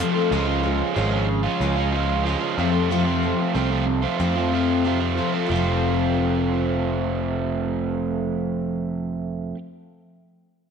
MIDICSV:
0, 0, Header, 1, 6, 480
1, 0, Start_track
1, 0, Key_signature, -1, "major"
1, 0, Tempo, 647948
1, 233, Time_signature, 4, 2, 24, 8
1, 7928, End_track
2, 0, Start_track
2, 0, Title_t, "Overdriven electric guitar"
2, 0, Program_c, 0, 29
2, 0, Note_on_c, 0, 41, 69
2, 0, Note_on_c, 0, 48, 74
2, 0, Note_on_c, 0, 53, 73
2, 0, Note_on_c, 0, 57, 74
2, 7, Note_on_c, 0, 60, 77
2, 12, Note_on_c, 0, 65, 67
2, 106, Note_off_c, 0, 65, 0
2, 108, Note_off_c, 0, 60, 0
2, 109, Note_on_c, 0, 65, 63
2, 110, Note_off_c, 0, 41, 0
2, 113, Note_off_c, 0, 48, 0
2, 114, Note_off_c, 0, 57, 0
2, 117, Note_on_c, 0, 60, 54
2, 123, Note_on_c, 0, 57, 52
2, 130, Note_off_c, 0, 53, 0
2, 133, Note_on_c, 0, 53, 45
2, 220, Note_off_c, 0, 60, 0
2, 223, Note_off_c, 0, 57, 0
2, 223, Note_on_c, 0, 49, 74
2, 229, Note_off_c, 0, 53, 0
2, 232, Note_on_c, 0, 53, 82
2, 242, Note_on_c, 0, 56, 76
2, 243, Note_on_c, 0, 61, 74
2, 247, Note_off_c, 0, 65, 0
2, 250, Note_on_c, 0, 65, 91
2, 344, Note_off_c, 0, 65, 0
2, 347, Note_on_c, 0, 65, 67
2, 350, Note_off_c, 0, 61, 0
2, 359, Note_off_c, 0, 56, 0
2, 359, Note_on_c, 0, 61, 57
2, 368, Note_on_c, 0, 56, 57
2, 587, Note_off_c, 0, 49, 0
2, 699, Note_on_c, 0, 49, 83
2, 705, Note_off_c, 0, 56, 0
2, 706, Note_off_c, 0, 53, 0
2, 709, Note_on_c, 0, 53, 82
2, 712, Note_off_c, 0, 61, 0
2, 714, Note_on_c, 0, 56, 79
2, 721, Note_on_c, 0, 61, 77
2, 725, Note_off_c, 0, 65, 0
2, 728, Note_on_c, 0, 65, 84
2, 818, Note_off_c, 0, 65, 0
2, 821, Note_on_c, 0, 65, 57
2, 826, Note_off_c, 0, 61, 0
2, 835, Note_on_c, 0, 61, 51
2, 839, Note_off_c, 0, 56, 0
2, 848, Note_on_c, 0, 56, 51
2, 938, Note_off_c, 0, 56, 0
2, 941, Note_off_c, 0, 61, 0
2, 946, Note_off_c, 0, 53, 0
2, 949, Note_off_c, 0, 65, 0
2, 1059, Note_on_c, 0, 65, 57
2, 1065, Note_off_c, 0, 49, 0
2, 1075, Note_on_c, 0, 61, 48
2, 1083, Note_on_c, 0, 56, 44
2, 1299, Note_off_c, 0, 65, 0
2, 1302, Note_on_c, 0, 65, 55
2, 1308, Note_off_c, 0, 61, 0
2, 1317, Note_on_c, 0, 61, 49
2, 1321, Note_off_c, 0, 56, 0
2, 1330, Note_on_c, 0, 56, 41
2, 1423, Note_off_c, 0, 56, 0
2, 1425, Note_on_c, 0, 53, 59
2, 1432, Note_off_c, 0, 61, 0
2, 1432, Note_on_c, 0, 56, 56
2, 1441, Note_on_c, 0, 61, 57
2, 1448, Note_off_c, 0, 65, 0
2, 1451, Note_on_c, 0, 65, 59
2, 1656, Note_on_c, 0, 49, 65
2, 1659, Note_off_c, 0, 53, 0
2, 1662, Note_off_c, 0, 56, 0
2, 1662, Note_on_c, 0, 53, 74
2, 1669, Note_off_c, 0, 61, 0
2, 1671, Note_on_c, 0, 56, 73
2, 1678, Note_on_c, 0, 61, 72
2, 1679, Note_off_c, 0, 65, 0
2, 1682, Note_on_c, 0, 65, 78
2, 1772, Note_off_c, 0, 65, 0
2, 1775, Note_on_c, 0, 65, 58
2, 1780, Note_off_c, 0, 61, 0
2, 1789, Note_on_c, 0, 61, 51
2, 1790, Note_off_c, 0, 56, 0
2, 1799, Note_on_c, 0, 56, 51
2, 1889, Note_off_c, 0, 49, 0
2, 1895, Note_off_c, 0, 61, 0
2, 1898, Note_on_c, 0, 41, 67
2, 1900, Note_off_c, 0, 56, 0
2, 1905, Note_on_c, 0, 48, 71
2, 1907, Note_off_c, 0, 53, 0
2, 1910, Note_on_c, 0, 53, 77
2, 1917, Note_on_c, 0, 57, 69
2, 1921, Note_off_c, 0, 65, 0
2, 1921, Note_on_c, 0, 60, 74
2, 1924, Note_on_c, 0, 65, 83
2, 2004, Note_off_c, 0, 65, 0
2, 2013, Note_on_c, 0, 65, 58
2, 2016, Note_off_c, 0, 60, 0
2, 2024, Note_off_c, 0, 57, 0
2, 2024, Note_on_c, 0, 60, 46
2, 2032, Note_off_c, 0, 53, 0
2, 2033, Note_on_c, 0, 57, 48
2, 2041, Note_on_c, 0, 53, 44
2, 2131, Note_off_c, 0, 41, 0
2, 2136, Note_off_c, 0, 48, 0
2, 2140, Note_off_c, 0, 53, 0
2, 2140, Note_on_c, 0, 41, 74
2, 2145, Note_on_c, 0, 48, 68
2, 2148, Note_off_c, 0, 57, 0
2, 2149, Note_on_c, 0, 53, 72
2, 2152, Note_off_c, 0, 60, 0
2, 2157, Note_off_c, 0, 65, 0
2, 2157, Note_on_c, 0, 57, 76
2, 2161, Note_on_c, 0, 60, 73
2, 2166, Note_on_c, 0, 65, 82
2, 2251, Note_off_c, 0, 65, 0
2, 2260, Note_on_c, 0, 65, 55
2, 2264, Note_off_c, 0, 60, 0
2, 2267, Note_off_c, 0, 57, 0
2, 2273, Note_on_c, 0, 60, 52
2, 2276, Note_on_c, 0, 57, 59
2, 2279, Note_off_c, 0, 53, 0
2, 2288, Note_on_c, 0, 53, 44
2, 2505, Note_off_c, 0, 41, 0
2, 2507, Note_off_c, 0, 48, 0
2, 2626, Note_off_c, 0, 53, 0
2, 2626, Note_on_c, 0, 41, 78
2, 2628, Note_on_c, 0, 48, 74
2, 2632, Note_off_c, 0, 57, 0
2, 2635, Note_on_c, 0, 53, 72
2, 2637, Note_off_c, 0, 60, 0
2, 2638, Note_off_c, 0, 65, 0
2, 2641, Note_on_c, 0, 57, 70
2, 2646, Note_on_c, 0, 60, 79
2, 2647, Note_on_c, 0, 65, 71
2, 2734, Note_off_c, 0, 65, 0
2, 2743, Note_off_c, 0, 60, 0
2, 2743, Note_on_c, 0, 65, 50
2, 2752, Note_on_c, 0, 60, 54
2, 2753, Note_off_c, 0, 57, 0
2, 2758, Note_off_c, 0, 53, 0
2, 2762, Note_on_c, 0, 57, 52
2, 2767, Note_on_c, 0, 53, 46
2, 2857, Note_off_c, 0, 53, 0
2, 2858, Note_off_c, 0, 57, 0
2, 2859, Note_off_c, 0, 60, 0
2, 2861, Note_off_c, 0, 65, 0
2, 2979, Note_on_c, 0, 65, 54
2, 2988, Note_off_c, 0, 41, 0
2, 2989, Note_off_c, 0, 48, 0
2, 2990, Note_on_c, 0, 60, 47
2, 2999, Note_on_c, 0, 57, 46
2, 3009, Note_on_c, 0, 53, 48
2, 3217, Note_off_c, 0, 65, 0
2, 3225, Note_on_c, 0, 65, 49
2, 3229, Note_off_c, 0, 60, 0
2, 3234, Note_off_c, 0, 57, 0
2, 3238, Note_on_c, 0, 60, 42
2, 3242, Note_off_c, 0, 53, 0
2, 3243, Note_on_c, 0, 57, 48
2, 3251, Note_on_c, 0, 53, 39
2, 3335, Note_off_c, 0, 53, 0
2, 3344, Note_off_c, 0, 57, 0
2, 3344, Note_on_c, 0, 53, 56
2, 3353, Note_off_c, 0, 60, 0
2, 3353, Note_on_c, 0, 57, 52
2, 3360, Note_off_c, 0, 65, 0
2, 3362, Note_on_c, 0, 60, 54
2, 3369, Note_on_c, 0, 65, 63
2, 3583, Note_on_c, 0, 41, 63
2, 3584, Note_off_c, 0, 53, 0
2, 3589, Note_off_c, 0, 57, 0
2, 3591, Note_on_c, 0, 48, 77
2, 3593, Note_on_c, 0, 53, 68
2, 3595, Note_off_c, 0, 60, 0
2, 3598, Note_on_c, 0, 57, 74
2, 3599, Note_off_c, 0, 65, 0
2, 3604, Note_on_c, 0, 60, 76
2, 3607, Note_on_c, 0, 65, 72
2, 3694, Note_off_c, 0, 65, 0
2, 3703, Note_on_c, 0, 65, 49
2, 3704, Note_off_c, 0, 60, 0
2, 3713, Note_off_c, 0, 57, 0
2, 3713, Note_on_c, 0, 60, 50
2, 3717, Note_off_c, 0, 53, 0
2, 3721, Note_on_c, 0, 57, 44
2, 3726, Note_on_c, 0, 53, 43
2, 3811, Note_off_c, 0, 53, 0
2, 3819, Note_off_c, 0, 57, 0
2, 3820, Note_on_c, 0, 53, 53
2, 3828, Note_on_c, 0, 57, 53
2, 3831, Note_off_c, 0, 60, 0
2, 3836, Note_off_c, 0, 65, 0
2, 3840, Note_on_c, 0, 60, 56
2, 3845, Note_on_c, 0, 65, 69
2, 3935, Note_off_c, 0, 65, 0
2, 3944, Note_on_c, 0, 65, 59
2, 3946, Note_off_c, 0, 41, 0
2, 3947, Note_off_c, 0, 60, 0
2, 3950, Note_off_c, 0, 48, 0
2, 3955, Note_off_c, 0, 57, 0
2, 3955, Note_on_c, 0, 60, 47
2, 3960, Note_off_c, 0, 53, 0
2, 3964, Note_on_c, 0, 57, 42
2, 3968, Note_on_c, 0, 53, 41
2, 4052, Note_off_c, 0, 65, 0
2, 4054, Note_off_c, 0, 53, 0
2, 4058, Note_off_c, 0, 60, 0
2, 4062, Note_off_c, 0, 57, 0
2, 4063, Note_on_c, 0, 53, 59
2, 4074, Note_on_c, 0, 57, 70
2, 4085, Note_on_c, 0, 60, 70
2, 4091, Note_on_c, 0, 65, 71
2, 7071, Note_off_c, 0, 53, 0
2, 7082, Note_off_c, 0, 57, 0
2, 7093, Note_off_c, 0, 60, 0
2, 7099, Note_off_c, 0, 65, 0
2, 7928, End_track
3, 0, Start_track
3, 0, Title_t, "Twelve-string acoustic guitar"
3, 0, Program_c, 1, 25
3, 469, Note_on_c, 1, 65, 51
3, 476, Note_on_c, 1, 61, 44
3, 486, Note_on_c, 1, 56, 42
3, 709, Note_off_c, 1, 56, 0
3, 710, Note_off_c, 1, 65, 0
3, 712, Note_off_c, 1, 61, 0
3, 1192, Note_on_c, 1, 49, 57
3, 1197, Note_on_c, 1, 53, 67
3, 1199, Note_on_c, 1, 56, 65
3, 1202, Note_on_c, 1, 61, 67
3, 1207, Note_on_c, 1, 65, 74
3, 1671, Note_off_c, 1, 49, 0
3, 1675, Note_off_c, 1, 53, 0
3, 1675, Note_off_c, 1, 56, 0
3, 1676, Note_off_c, 1, 61, 0
3, 1691, Note_off_c, 1, 65, 0
3, 2391, Note_on_c, 1, 65, 46
3, 2398, Note_on_c, 1, 60, 40
3, 2403, Note_on_c, 1, 57, 37
3, 2410, Note_on_c, 1, 53, 33
3, 2620, Note_off_c, 1, 53, 0
3, 2626, Note_off_c, 1, 57, 0
3, 2630, Note_off_c, 1, 65, 0
3, 2632, Note_off_c, 1, 60, 0
3, 3108, Note_on_c, 1, 41, 60
3, 3109, Note_on_c, 1, 48, 66
3, 3110, Note_on_c, 1, 53, 57
3, 3111, Note_on_c, 1, 57, 67
3, 3117, Note_on_c, 1, 60, 62
3, 3120, Note_on_c, 1, 65, 70
3, 3577, Note_off_c, 1, 53, 0
3, 3580, Note_off_c, 1, 57, 0
3, 3587, Note_off_c, 1, 60, 0
3, 3589, Note_off_c, 1, 41, 0
3, 3589, Note_off_c, 1, 48, 0
3, 3591, Note_off_c, 1, 65, 0
3, 4048, Note_on_c, 1, 41, 60
3, 4067, Note_on_c, 1, 48, 56
3, 4117, Note_on_c, 1, 60, 70
3, 4130, Note_on_c, 1, 65, 63
3, 7056, Note_off_c, 1, 41, 0
3, 7076, Note_off_c, 1, 48, 0
3, 7125, Note_off_c, 1, 60, 0
3, 7132, Note_off_c, 1, 65, 0
3, 7928, End_track
4, 0, Start_track
4, 0, Title_t, "Picked electric bass"
4, 0, Program_c, 2, 34
4, 232, Note_on_c, 2, 37, 87
4, 598, Note_off_c, 2, 37, 0
4, 714, Note_on_c, 2, 32, 87
4, 1079, Note_off_c, 2, 32, 0
4, 1187, Note_on_c, 2, 37, 81
4, 1738, Note_off_c, 2, 37, 0
4, 1909, Note_on_c, 2, 41, 65
4, 2459, Note_off_c, 2, 41, 0
4, 2630, Note_on_c, 2, 36, 79
4, 2996, Note_off_c, 2, 36, 0
4, 3109, Note_on_c, 2, 41, 81
4, 3843, Note_off_c, 2, 41, 0
4, 4072, Note_on_c, 2, 29, 70
4, 7050, Note_off_c, 2, 29, 0
4, 7928, End_track
5, 0, Start_track
5, 0, Title_t, "Muted overdriven electric guitar strokes"
5, 947, Note_on_c, 9, 29, 42
5, 1021, Note_off_c, 9, 29, 0
5, 2866, Note_on_c, 9, 29, 36
5, 2940, Note_off_c, 9, 29, 0
5, 7928, End_track
6, 0, Start_track
6, 0, Title_t, "Drums"
6, 0, Note_on_c, 9, 42, 50
6, 74, Note_off_c, 9, 42, 0
6, 7928, End_track
0, 0, End_of_file